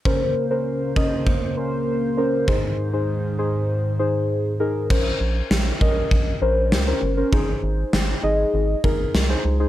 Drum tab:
CC |--------|--------|x-------|--------|
SD |--------|--------|--o---o-|--o---o-|
BD |o--oo---|o-------|o--oo---|o----o--|